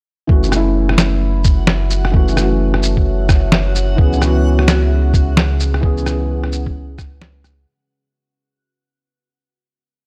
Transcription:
0.27 F#1 E3 A3 C#4 F#4 F#5, kick
0.43 shaker
0.48 E3 A3, cross-stick, shaker
0.54 C#4 E4 E5
0.73 C#5
0.89 cross-stick
0.98 snare, shaker
1.44 kick, shaker
1.67 snare
1.77 A5
1.90 shaker
2.05 cross-stick
2.12 E3 A3 C#4, kick
2.16 F#4
2.28 shaker
2.33 E3 A3
2.37 C#4 F#4, cross-stick, shaker
2.74 cross-stick
2.83 shaker
2.97 kick
3.29 kick, cross-stick, shaker
3.52 snare
3.75 shaker
3.96 C#2 E3 B3 C#4 G#4, kick
4.07 G#4
4.13 shaker
4.17 E3 B3
4.22 C#4 F#4, cross-stick, shaker
4.59 cross-stick
4.68 snare, shaker
4.94 B4
5.14 kick, shaker
5.37 snare
5.60 shaker
5.74 cross-stick
5.81 E3 B3 C#4, kick
5.85 G#4
5.97 shaker
6.02 E3 B3
6.06 C#4 G#4, cross-stick, shaker
6.44 cross-stick
6.52 shaker
6.66 kick
6.98 kick, cross-stick, shaker
7.21 snare
7.44 cross-stick, shaker

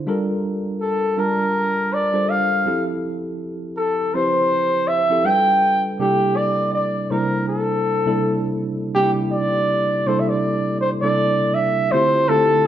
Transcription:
0.07 G3 D4 F4 A4 A#4
0.81 A4
1.17 G3 D4 F4 A#4 A5
1.93 D5
2.13 G3 D4 F4 A4 C5
2.29 F5
2.66 F3 C4 E4 G4 A4
3.77 A4
4.14 F3 C4 E4 G4 B4 C5
4.22 C5
4.88 E5
5.10 F3 C4 E4 G4 A4
5.25 G3 D4 F4 A4 B4 G5
5.99 C3 G3 A#3 D4 E4 G4 A4
6.36 D5
6.74 D5
7.10 C3 G3 A#3 D4 E4 A#4 C5
7.48 A4
8.06 C3 G3 A#3 D4 E4 A4
8.95 C3 G3 A#3 D4 D#4 G4
9.03 E4
9.32 D5
10.06 C3 G3 A#3 D4 E4 A4 C5
10.20 E5
10.29 D5
10.80 C5
11.01 C3 G3 A#3 D4 E4 A4 D5
11.54 E5
11.91 D3 A3 C4 E4 F4 G4 C5
12.29 D3 A3 C4 E4 F4 G4 A4

